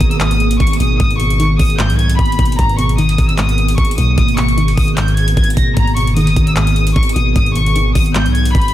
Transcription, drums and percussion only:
0.01 kick medium
0.01 closed hi-hat medium
0.11 closed hi-hat medium
0.20 clap loud
0.20 closed hi-hat medium
0.31 closed hi-hat medium
0.40 closed hi-hat medium
0.51 closed hi-hat medium
0.60 kick loud
0.60 closed hi-hat soft
0.67 closed hi-hat medium
0.73 closed hi-hat medium
0.80 closed hi-hat medium
1.00 kick loud
1.00 closed hi-hat medium
1.11 closed hi-hat medium
1.20 closed hi-hat medium
1.30 closed hi-hat medium
1.40 closed hi-hat medium
1.59 kick medium
1.59 open hi-hat medium
1.70 closed hi-hat medium
1.79 clap loud
1.79 closed hi-hat medium
1.90 closed hi-hat medium
1.99 closed hi-hat soft
2.10 closed hi-hat medium
2.19 kick loud
2.19 closed hi-hat soft
2.26 closed hi-hat medium
2.32 closed hi-hat medium
2.39 kick loud
2.39 closed hi-hat medium
2.46 closed hi-hat medium
2.52 closed hi-hat medium
2.59 kick loud
2.59 closed hi-hat medium
2.69 closed hi-hat medium
2.79 closed hi-hat medium
2.89 closed hi-hat medium
2.98 closed hi-hat medium
3.09 closed hi-hat medium
3.18 kick medium
3.18 closed hi-hat medium
3.29 closed hi-hat medium
3.38 clap loud
3.38 closed hi-hat medium
3.49 closed hi-hat medium
3.58 closed hi-hat soft
3.69 closed hi-hat medium
3.78 kick loud
3.78 closed hi-hat soft
3.85 closed hi-hat medium
3.91 closed hi-hat medium
3.98 closed hi-hat medium
4.18 kick loud
4.18 closed hi-hat medium
4.28 closed hi-hat medium
4.38 clap medium
4.38 closed hi-hat medium
4.49 closed hi-hat medium
4.58 closed hi-hat medium
4.68 closed hi-hat medium
4.77 kick medium
4.77 open hi-hat medium
4.88 closed hi-hat medium
4.97 clap loud
4.97 closed hi-hat medium
5.08 closed hi-hat medium
5.17 closed hi-hat soft
5.28 closed hi-hat medium
5.37 kick loud
5.37 closed hi-hat soft
5.44 closed hi-hat medium
5.50 closed hi-hat medium
5.57 kick loud
5.57 closed hi-hat medium
5.77 kick loud
5.77 closed hi-hat medium
5.87 closed hi-hat medium
5.97 closed hi-hat medium
6.07 closed hi-hat medium
6.17 closed hi-hat medium
6.27 closed hi-hat medium
6.36 kick medium
6.36 closed hi-hat medium
6.47 closed hi-hat medium
6.56 clap loud
6.56 closed hi-hat medium
6.67 closed hi-hat medium
6.76 closed hi-hat medium
6.87 closed hi-hat medium
6.96 kick loud
6.96 closed hi-hat soft
7.03 closed hi-hat medium
7.09 closed hi-hat medium
7.16 closed hi-hat medium
7.36 kick loud
7.36 closed hi-hat medium
7.46 closed hi-hat medium
7.56 closed hi-hat medium
7.66 closed hi-hat medium
7.76 closed hi-hat medium
7.95 kick medium
7.95 open hi-hat medium
8.06 closed hi-hat medium
8.15 clap loud
8.15 closed hi-hat medium
8.26 closed hi-hat medium
8.35 closed hi-hat medium
8.45 closed hi-hat medium
8.55 kick medium
8.55 closed hi-hat soft
8.61 closed hi-hat medium
8.68 closed hi-hat medium

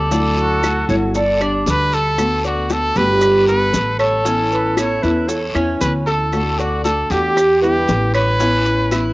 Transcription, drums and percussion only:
0.11 high bongo medium
0.11 long guiro medium
0.11 maracas medium
0.37 high bongo soft
0.37 maracas soft
0.63 high bongo medium
0.63 short guiro medium
0.63 claves medium
0.63 maracas medium
0.89 high bongo soft
0.89 short guiro medium
0.89 maracas soft
1.14 high bongo medium
1.14 long guiro medium
1.14 maracas medium
1.41 claves medium
1.41 maracas soft
1.66 high bongo soft
1.66 low bongo medium
1.66 short guiro medium
1.66 maracas medium
1.92 high bongo soft
1.92 short guiro medium
1.92 maracas soft
2.18 high bongo medium
2.18 long guiro medium
2.18 claves medium
2.18 maracas medium
2.44 high bongo soft
2.44 maracas soft
2.70 high bongo medium
2.70 short guiro medium
2.70 maracas medium
2.96 high bongo soft
2.96 short guiro medium
2.96 maracas soft
3.21 high bongo medium
3.21 long guiro medium
3.21 claves medium
3.21 maracas medium
3.48 maracas soft
3.73 high bongo soft
3.73 low bongo medium
3.73 short guiro medium
3.73 maracas medium
3.99 high bongo soft
3.99 short guiro medium
3.99 claves medium
3.99 maracas soft
4.25 high bongo medium
4.25 long guiro medium
4.25 maracas medium
4.52 high bongo soft
4.52 maracas soft
4.77 high bongo medium
4.77 short guiro medium
4.77 claves medium
4.77 maracas medium
5.03 high bongo soft
5.03 short guiro medium
5.03 maracas soft
5.28 high bongo medium
5.28 long guiro medium
5.28 maracas medium
5.55 claves medium
5.55 maracas soft
5.81 high bongo soft
5.81 low bongo medium
5.81 short guiro medium
5.81 maracas medium
6.07 high bongo soft
6.07 short guiro medium
6.07 maracas soft
6.33 high bongo medium
6.33 long guiro medium
6.33 claves medium
6.33 maracas medium
6.59 high bongo soft
6.59 maracas soft
6.84 high bongo medium
6.84 short guiro medium
6.84 maracas medium
7.10 high bongo soft
7.10 short guiro medium
7.10 maracas soft
7.36 high bongo medium
7.36 long guiro medium
7.36 claves medium
7.36 maracas medium
7.63 maracas soft
7.88 high bongo soft
7.88 low bongo medium
7.88 short guiro medium
7.88 maracas medium
8.14 high bongo soft
8.14 short guiro medium
8.14 claves medium
8.14 maracas soft
8.39 high bongo medium
8.39 long guiro medium
8.39 maracas medium
8.66 high bongo soft
8.66 maracas soft
8.91 high bongo medium
8.91 short guiro medium
8.91 claves medium
8.91 maracas medium

